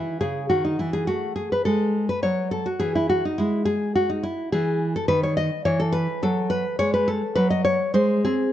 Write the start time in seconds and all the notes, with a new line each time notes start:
Already playing: E3 E4
0.21 C#3 G#4
0.50 D#3 F#4
0.65 D#4
0.79 E3 E4
0.93 G#4
1.07 A3 F#4
1.36 G#4
1.52 B4
1.65 G#3 A4
2.09 B4
2.23 F#3 C#5
2.51 A4
2.66 F#4
2.80 E3 G#4
2.95 E4
3.09 F#4
3.25 D#4
3.38 G#3 E4
3.65 G#4
3.95 F#4
4.10 D#4
4.23 E4
4.52 E3 G#4
4.96 A4
5.08 D#3 B4
5.23 C#5
5.37 D#5
5.65 E3 C#5
5.80 A4
5.92 B4
6.23 F#3 A4
6.50 B4
6.79 G#3 C#5
6.94 B4
7.08 A4
7.35 F#3 B4
7.50 D#5
7.65 C#5
7.94 G#3 C5
8.25 C4 G#4